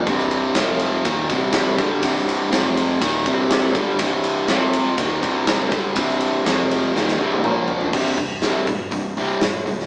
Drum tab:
CC |----------------|----------------|----------------|----------------|
RD |x-x-x-x-x-x-x-x-|x-x-x-x-x-x-x-x-|x-x-x-x-x-x-x-x-|x-x-x-x---------|
HH |----------------|----------------|----------------|----------------|
SD |-o--o-------o---|-o--o-------o---|----o-------o---|-o--o---oo------|
T1 |----------------|----------------|----------------|-----------o----|
T2 |----------------|----------------|----------------|------------o---|
FT |----------------|----------------|----------------|--------------oo|
BD |o-------o-o---o-|o-------o-o---o-|o-------o-o---o-|o---------------|

CC |x---------------|
RD |----------------|
HH |--o-o-o-o-o-o-o-|
SD |----o-------o--o|
T1 |----------------|
T2 |----------------|
FT |----------------|
BD |o-o---o-o-------|